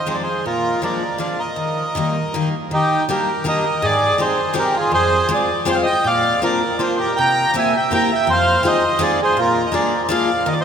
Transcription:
Already playing: D#5
0.06 F3 G#3 C4 D#4 G#4
0.11 C5 D5
0.23 G#4 C5
0.46 A#2 F4 A#4
0.82 F3 G#3 A#3 D4 A#4 D5
1.18 F3 G#3 A#3 D4 D5 F5
1.39 A#4 D#5
1.56 D#3
1.95 D#3 G3 A#3 D#4
2.34 D#3 G3 A#3 D#4
2.71 D#3 D#4 G4
3.09 G3 A#3 D4 D#4 G4 A#4
3.44 G3 A#3 D4 D#4 G4 A#4
3.48 D#5
3.82 G#2 G#4 D5
4.18 G#3 C4 D#4 G4 G#4 C5
4.53 G#3 C4 D#4 G4 G#4
4.58 G4 A#4
4.76 F4 G#4
4.92 F2 G#4 C5
5.29 G#3 C4 F4 G#4 C5
5.34 D5
5.65 G#3 C4 F4 G#4 C5
5.72 F5 G5
5.83 D#5 G5
6.04 A#2 D5 F5
6.42 A#3 C4 D4 F4 A#4 D5
6.79 A#3 C4 D4 F4 A#4 C5
6.97 G4 A#4
7.16 C3 G5 A#5
7.54 A#3 C4 E4 G4 A#4 E5
7.59 G#5
7.75 E5 G5
7.91 A#3 C4 E4 G4 A#4 G5
7.97 A#5
8.12 E5 G5
8.27 F2 C5
8.33 F5
8.63 G#3 C4 D#4 F4 G#4 C5
8.68 D#5
8.99 G#3 C4 D#4 F4 G#4
9.03 D5
9.22 G#4 C5
9.37 A#2 F4
9.41 A#4
9.66 D#5
9.72 G#3 A#3 D4 F4 G#4 A#4 D5
10.08 G#3 A#3 D4 F4 G#4 D5 F5
10.46 D#3 A#4 D#5
10.52 D5
10.61 C5

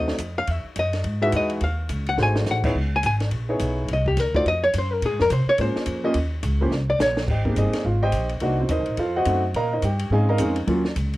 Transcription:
Already playing: D#2 A3 C4 D#4 F#4 C5 D#5
0.08 snare
0.18 F2, kick, hi-hat pedal, ride
0.38 F5
0.47 E2 E5, kick, ride
0.64 muted upright bass stroke
0.75 F#2 D#5, kick, hi-hat pedal, ride
0.93 snare, ride
1.04 G#2, kick, ride
1.22 G#3 D#4 E4 F#4 B4 E5
1.32 E2, kick, hi-hat pedal, ride
1.36 D#5
1.49 ride
1.61 D#2 F5, kick, ride
1.89 C#2, kick, hi-hat pedal, ride
2.07 F#5, ride
2.17 G#1 A3 D#4 F#4 G#4 C5, snare
2.23 G#5
2.36 snare
2.45 A1, snare, hi-hat pedal
2.51 F#5
2.64 B3 D#4 E4 G#4 C#5, kick, crash
2.75 C#2, kick
2.96 G#5
3.03 G#1 G#5, kick, hi-hat pedal, ride
3.20 snare, ride
3.31 A#1, kick, ride
3.49 B3 D#4 E4 G#4 C#5
3.60 B1, kick, hi-hat pedal, ride
3.88 C2, kick, ride
3.93 D#5
4.06 G4, kick
4.17 D2 A#4, kick, snare, hi-hat pedal, ride
4.34 A3 D#4 F4 F#4 C5 D5, kick
4.46 F2 D#5, kick, ride
4.64 C#5
4.74 F#2, kick, hi-hat pedal, ride
4.78 C5
4.93 A#4
5.02 A#2 G#4, kick, ride
5.10 G#2
5.19 F2 A#4, snare
5.30 C3 C5, kick, hi-hat pedal, ride
5.46 C#5, muted upright bass stroke
5.58 G#2 A#3 C#4 F4 G#4 C5, kick, ride
5.76 muted upright bass stroke, snare
5.86 F2, kick, hi-hat pedal, ride
6.04 A#3 C#4 F4 G4 D#5
6.14 D#2, kick, ride
6.43 C#2, kick, hi-hat pedal, ride
6.61 A#3 C#4 F4 G4 C5
6.71 C2, snare
6.90 D5
6.99 A#1 C#5, snare, hi-hat pedal
7.17 snare
7.28 G#1 G4 C5 D#5 G5, kick, crash
7.45 A#3 C4 D#4 G4 G#4 C5, kick
7.56 G1 D#4 G#4 C5 D#5, kick, hi-hat pedal, ride
7.73 snare, ride
7.85 G#1 F4 F5, kick
8.03 G4 C5 D#5 G5
8.12 A#1, kick, hi-hat pedal, ride
8.29 ride
8.40 C2 A#3 D4 D#4 F#4 C5 D#5 F#5, kick, ride
8.60 C4 D#4 F#4 C5
8.69 D#2 D#4 A#4 C5 D#5, kick, hi-hat pedal, ride
8.79 C2
8.86 A#1, ride
8.97 F2 F4 A4 C5 F5, kick, ride
9.16 F#4 C5 D#5 F#5
9.25 F#2 A3 C4 D#4 F#4, kick, hi-hat pedal, ride
9.54 A#2 A#4 D#5 F5 A#5, kick, ride
9.73 D#4 A#4 C5 D#5
9.82 G2 G4 G5, kick, hi-hat pedal, ride
9.99 ride
10.10 G#2 G#3 C4 C#4 D#4 G#4 D#5 F5 G#5, kick
10.29 A#4 D#5 F5 A#5
10.38 F2 G#3 C4 C#4 D#4, kick, hi-hat pedal, ride
10.56 ride
10.67 D#2 F#3 A#3 C#4 F4, kick, ride
10.85 snare
10.96 C#2, kick, hi-hat pedal, ride
11.13 ride

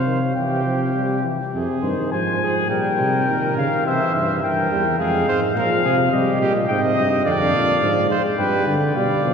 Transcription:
Already playing: C3 C5 F5
0.06 D#3
0.35 C3 E3 G4 G5
0.65 F3
0.94 G3
1.24 E3
1.53 F2 C3 G#4
1.82 G2 D#3 C5
2.12 G#2 F3 C5 G#5
2.42 G#4
2.69 A#2 G3 A#4 G5
2.99 C3
3.28 A#2 D#3
3.56 C#3 F5
3.85 C3 E3 C5 E5
4.14 G2 C5
4.42 G2 E3 A#4 G5
4.71 E2 G3
4.99 F2 G#3 G#4 F5
5.28 G#2 C5
5.56 A#2 F3 A#4 F5
5.85 C3 G#4
6.12 C3 G3 G4 D#5
6.40 A#2 G4
6.68 G#2 C3 D#5 G5
6.96 G2 D#5
7.24 F2 D3 D5 F5
7.32 G5
7.39 F5
7.53 A#2
7.81 G#2 F3
8.10 G#3 C5
8.38 G2 G3 B4 G5
8.67 D3 G5
8.95 B2 G3 D5 F5
9.24 B2 F3

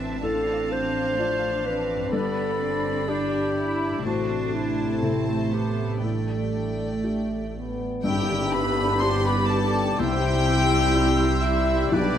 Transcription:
Already playing: A1 E3 A3 C4 D4 E4 C5 E5 A5
0.07 A2
0.12 A3
0.16 F4
0.21 A1 C4 A4 D5 F5
0.25 F3 D4
0.72 C5
1.18 A3 F4 D5
1.66 C4 B4
1.95 G2
2.00 B4
2.04 D4
2.09 A4 D5
2.13 G1 G2 G3 B3 B5
2.60 C4
3.08 D4 G4 D5
3.58 E4
3.89 A2
3.93 A3
3.98 C3
4.03 A1 A2 A3 D4 F#4 A4
4.07 C3 A3 C5 A5
4.55 E4
5.03 C3 C4 A4
5.53 B3 G4
5.86 A2 A3
5.95 D4
5.99 A2 A3 G4
6.03 G3 D4 A4 D5 G5
7.03 A3 D4 G4
7.57 B3
8.04 G1 G2 G3 B3 D4 G4 E5 G5 B5, tam-tam
8.30 D3
8.52 B3 B4 B5
8.79 D4
9.00 D4 G4 C5 D5 C6 D6
9.25 B4 B5
9.49 A4 A5
9.53 D5
9.77 G5
9.98 C2 C3 G3 E4 G4 C5 G5 E6
10.25 C4
10.49 G3
10.73 E4
10.95 E4 G4 C5
11.22 E4
11.43 E4 E5
11.70 G5
11.92 B1 B2 D4 B4 D5 G6

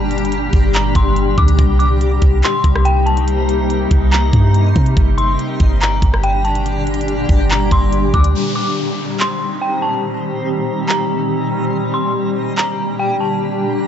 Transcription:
Already playing: G1 A#2 D3 G3 D4 G4 D5 A#5
0.11 closed hi-hat
0.18 closed hi-hat
0.25 closed hi-hat
0.32 closed hi-hat
0.53 G1, kick, open hi-hat
0.74 A#5, clap, closed hi-hat
0.95 G1 C6, kick, closed hi-hat
1.16 closed hi-hat
1.38 D2 D6, kick, closed hi-hat
1.48 closed hi-hat
1.59 C2 C3 A#3 D#4 C5 A#5, kick, closed hi-hat
1.79 D6, closed hi-hat
2.01 closed hi-hat
2.22 C2, kick, closed hi-hat
2.43 C6, clap, closed hi-hat
2.64 C2, kick, closed hi-hat
2.76 cross-stick
2.85 G5, closed hi-hat
3.06 A5, closed hi-hat
3.17 closed hi-hat
3.28 closed hi-hat
3.49 closed hi-hat
3.70 closed hi-hat
3.91 C2, kick, closed hi-hat
4.12 A#5, clap, closed hi-hat
4.33 G2, kick, closed hi-hat
4.54 closed hi-hat
4.76 C3, kick, closed hi-hat
4.86 closed hi-hat
4.96 G1 A#2 D3 G3 D4 G4 D5 A#5, kick, closed hi-hat
5.18 C6, closed hi-hat
5.39 closed hi-hat
5.60 G1, kick, closed hi-hat
5.81 A#5, clap, closed hi-hat
6.02 G1, kick, closed hi-hat
6.14 cross-stick
6.23 G5, closed hi-hat
6.45 A5, closed hi-hat
6.55 closed hi-hat
6.66 closed hi-hat
6.87 closed hi-hat
6.94 closed hi-hat
7.01 closed hi-hat
7.08 closed hi-hat
7.29 G1, kick, open hi-hat
7.50 A#5, clap, closed hi-hat
7.71 G1 C6, kick, closed hi-hat
7.92 closed hi-hat
8.14 D2 D6, kick, closed hi-hat
8.24 closed hi-hat
8.35 A#2 D#3 G3 C4 D#4 G4 C5 A#5, downlifter
8.56 D6
9.20 C6, clap
9.62 G5
9.82 A5
10.88 A#5, clap
11.73 D3 D4 G4 D5
11.94 C6
12.58 A#5, clap
12.99 G5
13.21 A5

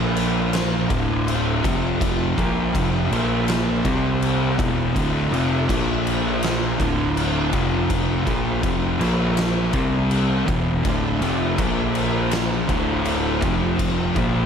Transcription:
Already playing: A#1 A#2 F3 A#3 F4 C5
0.16 crash
0.53 snare, crash
0.90 D1 D2 A2 D3, kick, crash
1.28 crash
1.64 F1 F2 C3 F3, kick, crash
2.01 kick, crash
2.36 A#1 A#2 F3 A#3, kick, crash
2.74 F1 F2 C3 F3, kick, crash
3.10 A#1 A#2 F3 A#3, crash
3.48 snare, crash
3.84 C2 C3 G3 C4, kick, crash
4.22 crash
4.55 E2 D4 A4 E5, kick
4.59 E1 B2 E3, crash
4.95 D1 D2 A2 D3, kick, crash
5.31 F1 F2 C3 F3, crash
5.68 A#1 A#2 F3 A#3 F4 C5, kick, crash
6.07 crash
6.43 snare, crash
6.79 D1 D2 A2 D3, kick, crash
7.17 crash
7.52 F1 F2 C3 F3, kick, crash
7.90 kick, crash
8.25 A#1 A#2 F3 A#3, kick, crash
8.62 F1 F2 C3 F3, kick, crash
8.99 A#1 A#2 F3 A#3, crash
9.37 snare, crash
9.73 C2 C3 G3 C4, kick, crash
10.11 crash
10.46 E1 E2 B2 E3 D4 A4 E5, kick, crash
10.84 D1 D2 A2 D3, kick, crash
11.19 F1 F2 C3 F3, crash
11.57 A#1 A#2 F3 A#3 F4 C5, kick, crash
11.95 crash
12.31 snare, crash
12.68 D1 D2 A2 D3, kick, crash
13.05 crash
13.42 F1 F2 C3 F3, kick, crash
13.79 kick, crash
14.16 A#1 A#2 F3 A#3, kick, crash

